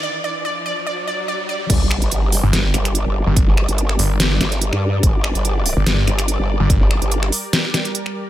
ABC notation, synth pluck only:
X:1
M:4/4
L:1/8
Q:"Swing 16ths" 1/4=144
K:Gm
V:1 name="Synth pluck"
d d d d d d d d | z8 | z8 | z8 |
z8 |]